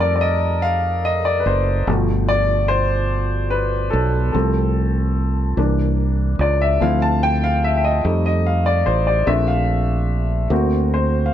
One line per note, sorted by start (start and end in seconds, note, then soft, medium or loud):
0.00 1.42 F2 medium
0.00 0.60 G3 soft
0.00 0.60 A3 soft
0.00 0.60 D#4 soft
0.00 1.89 A4 medium
0.00 1.89 A#4 medium
0.00 0.14 D5 medium
0.16 0.23 D5 medium
0.21 0.64 D#5 medium
0.62 1.06 F5 medium
1.05 1.26 D#5 medium
1.25 1.39 D5 medium
1.40 1.47 B4 medium
1.46 1.84 F#1 medium
1.46 1.85 C5 medium
1.87 3.89 G1 medium
1.87 4.31 B2 soft
1.87 4.30 F3 soft
1.87 4.30 A3 soft
2.29 2.38 D5 medium
2.68 3.54 C5 medium
3.50 3.94 B4 medium
3.90 4.31 B1 medium
3.90 4.31 A4 medium
4.32 5.54 C2 medium
4.32 5.53 F3 soft
4.32 5.53 A3 soft
4.32 5.54 C4 soft
4.32 5.53 A4 medium
5.57 6.36 C2 medium
5.57 6.12 E3 soft
5.57 6.12 A#3 soft
5.57 6.12 D4 soft
6.39 6.77 C#2 medium
6.39 6.62 D5 medium
6.61 6.82 E5 medium
6.80 8.00 D2 medium
6.80 8.00 F3 soft
6.80 8.00 C4 soft
6.80 8.01 E4 soft
6.80 7.03 F5 medium
7.02 7.23 A5 medium
7.23 7.44 G5 medium
7.44 7.64 F5 medium
7.64 7.76 E5 medium
7.77 7.84 E5 medium
7.84 8.24 D#5 medium
8.05 8.83 F2 medium
8.05 9.24 G3 soft
8.05 9.24 A3 soft
8.05 9.24 D#4 soft
8.26 8.46 D#5 medium
8.47 8.67 F5 medium
8.66 8.87 D5 medium
8.86 9.24 A1 medium
8.86 9.07 C5 medium
9.07 9.28 D5 medium
9.26 10.47 A#1 medium
9.26 9.82 A3 soft
9.26 9.82 C4 soft
9.26 9.82 D4 soft
9.26 9.48 E5 medium
9.48 9.86 F5 medium
10.50 11.29 D2 medium
10.50 11.05 A#3 soft
10.50 11.06 C4 soft
10.50 11.06 F#4 medium
10.94 11.01 C5 medium
11.26 11.33 F5 medium